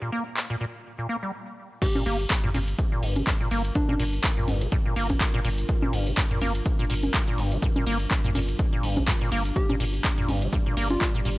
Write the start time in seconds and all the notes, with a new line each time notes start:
Already playing: G3 D4 G4 A#4
0.02 A#2
0.12 A#3
0.37 clap
0.50 A#2
0.61 A#2
0.99 A#2
1.09 A#3
1.23 G3
1.82 G2 G3 D4 F4 G4 A#4, kick, closed hi-hat, crash, shaker
1.95 A#2, high conga, shaker
2.06 G1 A#3 G4, open hi-hat, ride, shaker
2.20 closed hi-hat, shaker
2.30 kick, clap, closed hi-hat, shaker
2.44 A#2, mid tom, shaker
2.54 G1 A#2, open hi-hat, ride, high conga, shaker
2.68 closed hi-hat, shaker
2.79 kick, closed hi-hat, shaker
2.92 A#2, shaker
3.03 G1 G2, open hi-hat, ride, shaker
3.16 D3, closed hi-hat, high conga, shaker
3.27 G2, kick, clap, closed hi-hat, shaker
3.40 A#2, shaker
3.51 G1 A#3, open hi-hat, ride, shaker
3.65 closed hi-hat, shaker
3.75 D4, kick, closed hi-hat, shaker
3.89 A#2, high conga, shaker
3.99 G1 A#2, open hi-hat, ride, shaker
4.13 closed hi-hat, shaker
4.24 kick, clap, closed hi-hat, shaker
4.37 A#2, mid tom, shaker
4.48 G1 G2, open hi-hat, ride, high conga, shaker
4.61 D3, closed hi-hat, shaker
4.72 G2, kick, closed hi-hat, shaker
4.86 A#2, shaker
4.96 G1 A#3, open hi-hat, ride, shaker
5.10 kick, closed hi-hat, high conga, shaker
5.20 kick, clap, closed hi-hat, shaker
5.34 A#2, shaker
5.45 G1 A#2, open hi-hat, ride, shaker
5.58 closed hi-hat, shaker
5.69 kick, closed hi-hat, shaker
5.82 A#2, high conga, shaker
5.93 G1 G2, open hi-hat, ride, shaker
6.07 D3, closed hi-hat, shaker
6.17 G2, kick, clap, closed hi-hat, shaker
6.31 A#2, mid tom, shaker
6.41 G1 A#3, open hi-hat, ride, high conga, shaker
6.55 closed hi-hat, shaker
6.66 kick, closed hi-hat, shaker
6.79 A#2, shaker
6.90 G1 A#2, open hi-hat, ride, shaker
7.03 closed hi-hat, high conga, shaker
7.14 kick, clap, closed hi-hat, shaker
7.28 A#2, shaker
7.38 G1 G2, open hi-hat, ride, shaker
7.52 D3, closed hi-hat, shaker
7.62 G2, kick, closed hi-hat, shaker
7.76 A#2, high conga, shaker
7.87 G1 A#3, open hi-hat, ride, shaker
8.00 closed hi-hat, shaker
8.11 kick, clap, closed hi-hat, shaker
8.24 A#2, mid tom, shaker
8.35 G1 A#2, open hi-hat, ride, high conga, shaker
8.48 closed hi-hat, shaker
8.59 kick, closed hi-hat, shaker
8.73 A#2, shaker
8.83 G1 G2, open hi-hat, ride, shaker
8.97 D3, kick, closed hi-hat, high conga, shaker
9.07 G2, kick, clap, closed hi-hat, shaker
9.21 A#2, shaker
9.32 G1 A#3, open hi-hat, ride, shaker
9.45 closed hi-hat, shaker
9.56 G4 D5, kick, closed hi-hat, shaker
9.69 A#2, high conga, shaker
9.80 G1 A#2, open hi-hat, ride, shaker
9.94 closed hi-hat, shaker
10.04 kick, clap, closed hi-hat, shaker
10.18 A#2, mid tom, shaker
10.28 G1 G2, open hi-hat, ride, high conga, shaker
10.42 D3, closed hi-hat, shaker
10.53 G2, kick, closed hi-hat, shaker
10.66 A#2, shaker
10.77 G1 A#3, open hi-hat, ride, shaker
10.90 F4, closed hi-hat, high conga, shaker
11.01 kick, clap, closed hi-hat, shaker
11.15 A#2, shaker
11.25 G1 A#2, open hi-hat, ride, shaker